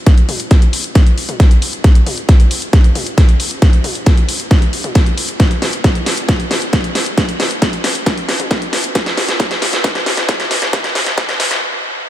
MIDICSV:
0, 0, Header, 1, 2, 480
1, 0, Start_track
1, 0, Tempo, 444444
1, 71, Time_signature, 4, 2, 24, 8
1, 13057, End_track
2, 0, Start_track
2, 0, Title_t, "Drums"
2, 70, Note_on_c, 9, 38, 49
2, 70, Note_on_c, 9, 42, 83
2, 71, Note_on_c, 9, 36, 117
2, 178, Note_off_c, 9, 38, 0
2, 178, Note_off_c, 9, 42, 0
2, 179, Note_off_c, 9, 36, 0
2, 190, Note_on_c, 9, 42, 53
2, 298, Note_off_c, 9, 42, 0
2, 310, Note_on_c, 9, 46, 102
2, 310, Note_on_c, 9, 47, 55
2, 418, Note_off_c, 9, 46, 0
2, 418, Note_off_c, 9, 47, 0
2, 429, Note_on_c, 9, 42, 51
2, 537, Note_off_c, 9, 42, 0
2, 549, Note_on_c, 9, 38, 52
2, 549, Note_on_c, 9, 42, 85
2, 551, Note_on_c, 9, 36, 113
2, 657, Note_off_c, 9, 38, 0
2, 657, Note_off_c, 9, 42, 0
2, 659, Note_off_c, 9, 36, 0
2, 670, Note_on_c, 9, 42, 53
2, 778, Note_off_c, 9, 42, 0
2, 789, Note_on_c, 9, 46, 98
2, 897, Note_off_c, 9, 46, 0
2, 910, Note_on_c, 9, 42, 52
2, 1018, Note_off_c, 9, 42, 0
2, 1029, Note_on_c, 9, 38, 56
2, 1029, Note_on_c, 9, 42, 88
2, 1031, Note_on_c, 9, 36, 112
2, 1137, Note_off_c, 9, 38, 0
2, 1137, Note_off_c, 9, 42, 0
2, 1139, Note_off_c, 9, 36, 0
2, 1150, Note_on_c, 9, 42, 51
2, 1258, Note_off_c, 9, 42, 0
2, 1270, Note_on_c, 9, 46, 100
2, 1378, Note_off_c, 9, 46, 0
2, 1391, Note_on_c, 9, 42, 47
2, 1391, Note_on_c, 9, 47, 53
2, 1499, Note_off_c, 9, 42, 0
2, 1499, Note_off_c, 9, 47, 0
2, 1511, Note_on_c, 9, 36, 117
2, 1511, Note_on_c, 9, 38, 55
2, 1511, Note_on_c, 9, 42, 88
2, 1619, Note_off_c, 9, 36, 0
2, 1619, Note_off_c, 9, 38, 0
2, 1619, Note_off_c, 9, 42, 0
2, 1630, Note_on_c, 9, 42, 52
2, 1738, Note_off_c, 9, 42, 0
2, 1750, Note_on_c, 9, 46, 92
2, 1858, Note_off_c, 9, 46, 0
2, 1870, Note_on_c, 9, 42, 51
2, 1978, Note_off_c, 9, 42, 0
2, 1989, Note_on_c, 9, 38, 54
2, 1989, Note_on_c, 9, 42, 81
2, 1991, Note_on_c, 9, 36, 112
2, 2097, Note_off_c, 9, 38, 0
2, 2097, Note_off_c, 9, 42, 0
2, 2099, Note_off_c, 9, 36, 0
2, 2109, Note_on_c, 9, 42, 52
2, 2217, Note_off_c, 9, 42, 0
2, 2230, Note_on_c, 9, 46, 98
2, 2230, Note_on_c, 9, 47, 57
2, 2338, Note_off_c, 9, 46, 0
2, 2338, Note_off_c, 9, 47, 0
2, 2350, Note_on_c, 9, 42, 48
2, 2458, Note_off_c, 9, 42, 0
2, 2470, Note_on_c, 9, 38, 55
2, 2470, Note_on_c, 9, 42, 83
2, 2471, Note_on_c, 9, 36, 123
2, 2578, Note_off_c, 9, 38, 0
2, 2578, Note_off_c, 9, 42, 0
2, 2579, Note_off_c, 9, 36, 0
2, 2590, Note_on_c, 9, 42, 49
2, 2698, Note_off_c, 9, 42, 0
2, 2710, Note_on_c, 9, 46, 96
2, 2818, Note_off_c, 9, 46, 0
2, 2831, Note_on_c, 9, 42, 53
2, 2939, Note_off_c, 9, 42, 0
2, 2950, Note_on_c, 9, 38, 61
2, 2950, Note_on_c, 9, 42, 84
2, 2950, Note_on_c, 9, 47, 59
2, 2951, Note_on_c, 9, 36, 114
2, 3058, Note_off_c, 9, 38, 0
2, 3058, Note_off_c, 9, 42, 0
2, 3058, Note_off_c, 9, 47, 0
2, 3059, Note_off_c, 9, 36, 0
2, 3071, Note_on_c, 9, 42, 50
2, 3179, Note_off_c, 9, 42, 0
2, 3190, Note_on_c, 9, 46, 106
2, 3190, Note_on_c, 9, 47, 60
2, 3298, Note_off_c, 9, 46, 0
2, 3298, Note_off_c, 9, 47, 0
2, 3311, Note_on_c, 9, 42, 50
2, 3419, Note_off_c, 9, 42, 0
2, 3431, Note_on_c, 9, 36, 120
2, 3431, Note_on_c, 9, 38, 63
2, 3431, Note_on_c, 9, 42, 87
2, 3539, Note_off_c, 9, 36, 0
2, 3539, Note_off_c, 9, 38, 0
2, 3539, Note_off_c, 9, 42, 0
2, 3550, Note_on_c, 9, 42, 51
2, 3658, Note_off_c, 9, 42, 0
2, 3670, Note_on_c, 9, 46, 92
2, 3778, Note_off_c, 9, 46, 0
2, 3790, Note_on_c, 9, 42, 49
2, 3898, Note_off_c, 9, 42, 0
2, 3910, Note_on_c, 9, 38, 62
2, 3910, Note_on_c, 9, 42, 78
2, 3911, Note_on_c, 9, 36, 112
2, 4018, Note_off_c, 9, 38, 0
2, 4018, Note_off_c, 9, 42, 0
2, 4019, Note_off_c, 9, 36, 0
2, 4030, Note_on_c, 9, 42, 50
2, 4138, Note_off_c, 9, 42, 0
2, 4149, Note_on_c, 9, 46, 101
2, 4149, Note_on_c, 9, 47, 59
2, 4257, Note_off_c, 9, 46, 0
2, 4257, Note_off_c, 9, 47, 0
2, 4270, Note_on_c, 9, 42, 46
2, 4378, Note_off_c, 9, 42, 0
2, 4388, Note_on_c, 9, 38, 61
2, 4388, Note_on_c, 9, 42, 81
2, 4391, Note_on_c, 9, 36, 126
2, 4496, Note_off_c, 9, 38, 0
2, 4496, Note_off_c, 9, 42, 0
2, 4499, Note_off_c, 9, 36, 0
2, 4509, Note_on_c, 9, 42, 51
2, 4617, Note_off_c, 9, 42, 0
2, 4629, Note_on_c, 9, 46, 100
2, 4737, Note_off_c, 9, 46, 0
2, 4749, Note_on_c, 9, 42, 51
2, 4857, Note_off_c, 9, 42, 0
2, 4869, Note_on_c, 9, 38, 69
2, 4869, Note_on_c, 9, 42, 81
2, 4871, Note_on_c, 9, 36, 117
2, 4977, Note_off_c, 9, 38, 0
2, 4977, Note_off_c, 9, 42, 0
2, 4979, Note_off_c, 9, 36, 0
2, 4990, Note_on_c, 9, 42, 49
2, 5098, Note_off_c, 9, 42, 0
2, 5109, Note_on_c, 9, 46, 104
2, 5217, Note_off_c, 9, 46, 0
2, 5229, Note_on_c, 9, 42, 49
2, 5229, Note_on_c, 9, 47, 58
2, 5337, Note_off_c, 9, 42, 0
2, 5337, Note_off_c, 9, 47, 0
2, 5348, Note_on_c, 9, 38, 67
2, 5348, Note_on_c, 9, 42, 84
2, 5351, Note_on_c, 9, 36, 119
2, 5456, Note_off_c, 9, 38, 0
2, 5456, Note_off_c, 9, 42, 0
2, 5459, Note_off_c, 9, 36, 0
2, 5469, Note_on_c, 9, 42, 50
2, 5577, Note_off_c, 9, 42, 0
2, 5589, Note_on_c, 9, 46, 94
2, 5697, Note_off_c, 9, 46, 0
2, 5709, Note_on_c, 9, 42, 47
2, 5817, Note_off_c, 9, 42, 0
2, 5829, Note_on_c, 9, 38, 70
2, 5829, Note_on_c, 9, 42, 81
2, 5831, Note_on_c, 9, 36, 112
2, 5937, Note_off_c, 9, 38, 0
2, 5937, Note_off_c, 9, 42, 0
2, 5939, Note_off_c, 9, 36, 0
2, 5950, Note_on_c, 9, 42, 49
2, 6058, Note_off_c, 9, 42, 0
2, 6070, Note_on_c, 9, 38, 70
2, 6070, Note_on_c, 9, 46, 100
2, 6070, Note_on_c, 9, 47, 59
2, 6178, Note_off_c, 9, 38, 0
2, 6178, Note_off_c, 9, 46, 0
2, 6178, Note_off_c, 9, 47, 0
2, 6189, Note_on_c, 9, 42, 46
2, 6297, Note_off_c, 9, 42, 0
2, 6310, Note_on_c, 9, 38, 72
2, 6310, Note_on_c, 9, 42, 84
2, 6311, Note_on_c, 9, 36, 114
2, 6418, Note_off_c, 9, 38, 0
2, 6418, Note_off_c, 9, 42, 0
2, 6419, Note_off_c, 9, 36, 0
2, 6429, Note_on_c, 9, 42, 50
2, 6537, Note_off_c, 9, 42, 0
2, 6549, Note_on_c, 9, 38, 82
2, 6549, Note_on_c, 9, 46, 97
2, 6657, Note_off_c, 9, 38, 0
2, 6657, Note_off_c, 9, 46, 0
2, 6668, Note_on_c, 9, 42, 52
2, 6776, Note_off_c, 9, 42, 0
2, 6788, Note_on_c, 9, 38, 79
2, 6788, Note_on_c, 9, 42, 85
2, 6788, Note_on_c, 9, 47, 63
2, 6791, Note_on_c, 9, 36, 117
2, 6896, Note_off_c, 9, 38, 0
2, 6896, Note_off_c, 9, 42, 0
2, 6896, Note_off_c, 9, 47, 0
2, 6899, Note_off_c, 9, 36, 0
2, 6909, Note_on_c, 9, 42, 49
2, 7017, Note_off_c, 9, 42, 0
2, 7028, Note_on_c, 9, 38, 82
2, 7028, Note_on_c, 9, 46, 104
2, 7028, Note_on_c, 9, 47, 65
2, 7136, Note_off_c, 9, 38, 0
2, 7136, Note_off_c, 9, 46, 0
2, 7136, Note_off_c, 9, 47, 0
2, 7149, Note_on_c, 9, 42, 49
2, 7257, Note_off_c, 9, 42, 0
2, 7268, Note_on_c, 9, 38, 78
2, 7268, Note_on_c, 9, 42, 89
2, 7271, Note_on_c, 9, 36, 118
2, 7376, Note_off_c, 9, 38, 0
2, 7376, Note_off_c, 9, 42, 0
2, 7379, Note_off_c, 9, 36, 0
2, 7388, Note_on_c, 9, 42, 53
2, 7496, Note_off_c, 9, 42, 0
2, 7508, Note_on_c, 9, 38, 78
2, 7508, Note_on_c, 9, 46, 91
2, 7616, Note_off_c, 9, 38, 0
2, 7616, Note_off_c, 9, 46, 0
2, 7629, Note_on_c, 9, 42, 49
2, 7737, Note_off_c, 9, 42, 0
2, 7749, Note_on_c, 9, 38, 78
2, 7749, Note_on_c, 9, 42, 91
2, 7751, Note_on_c, 9, 36, 105
2, 7857, Note_off_c, 9, 38, 0
2, 7857, Note_off_c, 9, 42, 0
2, 7859, Note_off_c, 9, 36, 0
2, 7869, Note_on_c, 9, 42, 50
2, 7977, Note_off_c, 9, 42, 0
2, 7989, Note_on_c, 9, 38, 79
2, 7989, Note_on_c, 9, 46, 97
2, 7989, Note_on_c, 9, 47, 60
2, 8097, Note_off_c, 9, 38, 0
2, 8097, Note_off_c, 9, 46, 0
2, 8097, Note_off_c, 9, 47, 0
2, 8109, Note_on_c, 9, 42, 50
2, 8217, Note_off_c, 9, 42, 0
2, 8229, Note_on_c, 9, 38, 80
2, 8229, Note_on_c, 9, 42, 91
2, 8231, Note_on_c, 9, 36, 107
2, 8337, Note_off_c, 9, 38, 0
2, 8337, Note_off_c, 9, 42, 0
2, 8339, Note_off_c, 9, 36, 0
2, 8349, Note_on_c, 9, 42, 51
2, 8457, Note_off_c, 9, 42, 0
2, 8468, Note_on_c, 9, 38, 87
2, 8468, Note_on_c, 9, 46, 96
2, 8576, Note_off_c, 9, 38, 0
2, 8576, Note_off_c, 9, 46, 0
2, 8588, Note_on_c, 9, 42, 53
2, 8696, Note_off_c, 9, 42, 0
2, 8708, Note_on_c, 9, 38, 89
2, 8708, Note_on_c, 9, 42, 91
2, 8711, Note_on_c, 9, 36, 114
2, 8816, Note_off_c, 9, 38, 0
2, 8816, Note_off_c, 9, 42, 0
2, 8819, Note_off_c, 9, 36, 0
2, 8829, Note_on_c, 9, 42, 52
2, 8937, Note_off_c, 9, 42, 0
2, 8949, Note_on_c, 9, 38, 87
2, 8949, Note_on_c, 9, 46, 103
2, 9057, Note_off_c, 9, 38, 0
2, 9057, Note_off_c, 9, 46, 0
2, 9068, Note_on_c, 9, 42, 52
2, 9068, Note_on_c, 9, 47, 63
2, 9176, Note_off_c, 9, 42, 0
2, 9176, Note_off_c, 9, 47, 0
2, 9188, Note_on_c, 9, 38, 90
2, 9188, Note_on_c, 9, 42, 91
2, 9191, Note_on_c, 9, 36, 110
2, 9296, Note_off_c, 9, 38, 0
2, 9296, Note_off_c, 9, 42, 0
2, 9299, Note_off_c, 9, 36, 0
2, 9308, Note_on_c, 9, 42, 53
2, 9416, Note_off_c, 9, 42, 0
2, 9427, Note_on_c, 9, 38, 89
2, 9427, Note_on_c, 9, 46, 91
2, 9535, Note_off_c, 9, 38, 0
2, 9535, Note_off_c, 9, 46, 0
2, 9548, Note_on_c, 9, 42, 51
2, 9656, Note_off_c, 9, 42, 0
2, 9668, Note_on_c, 9, 38, 91
2, 9668, Note_on_c, 9, 42, 89
2, 9671, Note_on_c, 9, 36, 107
2, 9776, Note_off_c, 9, 38, 0
2, 9776, Note_off_c, 9, 42, 0
2, 9779, Note_off_c, 9, 36, 0
2, 9788, Note_on_c, 9, 38, 82
2, 9788, Note_on_c, 9, 42, 52
2, 9896, Note_off_c, 9, 38, 0
2, 9896, Note_off_c, 9, 42, 0
2, 9909, Note_on_c, 9, 38, 87
2, 9909, Note_on_c, 9, 46, 97
2, 9909, Note_on_c, 9, 47, 61
2, 10017, Note_off_c, 9, 38, 0
2, 10017, Note_off_c, 9, 46, 0
2, 10017, Note_off_c, 9, 47, 0
2, 10029, Note_on_c, 9, 38, 80
2, 10029, Note_on_c, 9, 42, 56
2, 10137, Note_off_c, 9, 38, 0
2, 10137, Note_off_c, 9, 42, 0
2, 10149, Note_on_c, 9, 38, 90
2, 10149, Note_on_c, 9, 42, 93
2, 10151, Note_on_c, 9, 36, 118
2, 10257, Note_off_c, 9, 38, 0
2, 10257, Note_off_c, 9, 42, 0
2, 10259, Note_off_c, 9, 36, 0
2, 10269, Note_on_c, 9, 38, 84
2, 10269, Note_on_c, 9, 42, 56
2, 10377, Note_off_c, 9, 38, 0
2, 10377, Note_off_c, 9, 42, 0
2, 10389, Note_on_c, 9, 38, 97
2, 10389, Note_on_c, 9, 46, 94
2, 10497, Note_off_c, 9, 38, 0
2, 10497, Note_off_c, 9, 46, 0
2, 10509, Note_on_c, 9, 38, 84
2, 10509, Note_on_c, 9, 42, 58
2, 10617, Note_off_c, 9, 38, 0
2, 10617, Note_off_c, 9, 42, 0
2, 10629, Note_on_c, 9, 38, 99
2, 10629, Note_on_c, 9, 42, 96
2, 10629, Note_on_c, 9, 47, 64
2, 10631, Note_on_c, 9, 36, 112
2, 10737, Note_off_c, 9, 38, 0
2, 10737, Note_off_c, 9, 42, 0
2, 10737, Note_off_c, 9, 47, 0
2, 10739, Note_off_c, 9, 36, 0
2, 10749, Note_on_c, 9, 38, 87
2, 10749, Note_on_c, 9, 42, 52
2, 10857, Note_off_c, 9, 38, 0
2, 10857, Note_off_c, 9, 42, 0
2, 10868, Note_on_c, 9, 38, 95
2, 10868, Note_on_c, 9, 46, 100
2, 10868, Note_on_c, 9, 47, 63
2, 10976, Note_off_c, 9, 38, 0
2, 10976, Note_off_c, 9, 46, 0
2, 10976, Note_off_c, 9, 47, 0
2, 10988, Note_on_c, 9, 38, 85
2, 10988, Note_on_c, 9, 42, 55
2, 11096, Note_off_c, 9, 38, 0
2, 11096, Note_off_c, 9, 42, 0
2, 11109, Note_on_c, 9, 38, 98
2, 11109, Note_on_c, 9, 42, 97
2, 11111, Note_on_c, 9, 36, 112
2, 11217, Note_off_c, 9, 38, 0
2, 11217, Note_off_c, 9, 42, 0
2, 11219, Note_off_c, 9, 36, 0
2, 11229, Note_on_c, 9, 38, 91
2, 11229, Note_on_c, 9, 42, 54
2, 11337, Note_off_c, 9, 38, 0
2, 11337, Note_off_c, 9, 42, 0
2, 11349, Note_on_c, 9, 38, 98
2, 11349, Note_on_c, 9, 46, 89
2, 11457, Note_off_c, 9, 38, 0
2, 11457, Note_off_c, 9, 46, 0
2, 11470, Note_on_c, 9, 38, 89
2, 11470, Note_on_c, 9, 42, 52
2, 11578, Note_off_c, 9, 38, 0
2, 11578, Note_off_c, 9, 42, 0
2, 11590, Note_on_c, 9, 38, 99
2, 11590, Note_on_c, 9, 42, 92
2, 11591, Note_on_c, 9, 36, 113
2, 11698, Note_off_c, 9, 38, 0
2, 11698, Note_off_c, 9, 42, 0
2, 11699, Note_off_c, 9, 36, 0
2, 11709, Note_on_c, 9, 38, 91
2, 11709, Note_on_c, 9, 42, 58
2, 11817, Note_off_c, 9, 38, 0
2, 11817, Note_off_c, 9, 42, 0
2, 11829, Note_on_c, 9, 38, 102
2, 11829, Note_on_c, 9, 46, 105
2, 11829, Note_on_c, 9, 47, 60
2, 11937, Note_off_c, 9, 38, 0
2, 11937, Note_off_c, 9, 46, 0
2, 11937, Note_off_c, 9, 47, 0
2, 11950, Note_on_c, 9, 38, 90
2, 11950, Note_on_c, 9, 42, 55
2, 12058, Note_off_c, 9, 38, 0
2, 12058, Note_off_c, 9, 42, 0
2, 12070, Note_on_c, 9, 38, 100
2, 12070, Note_on_c, 9, 42, 95
2, 12071, Note_on_c, 9, 36, 116
2, 12178, Note_off_c, 9, 38, 0
2, 12178, Note_off_c, 9, 42, 0
2, 12179, Note_off_c, 9, 36, 0
2, 12191, Note_on_c, 9, 38, 100
2, 12191, Note_on_c, 9, 42, 60
2, 12299, Note_off_c, 9, 38, 0
2, 12299, Note_off_c, 9, 42, 0
2, 12310, Note_on_c, 9, 38, 114
2, 12310, Note_on_c, 9, 46, 99
2, 12418, Note_off_c, 9, 38, 0
2, 12418, Note_off_c, 9, 46, 0
2, 12430, Note_on_c, 9, 38, 96
2, 12430, Note_on_c, 9, 42, 58
2, 12538, Note_off_c, 9, 38, 0
2, 12538, Note_off_c, 9, 42, 0
2, 13057, End_track
0, 0, End_of_file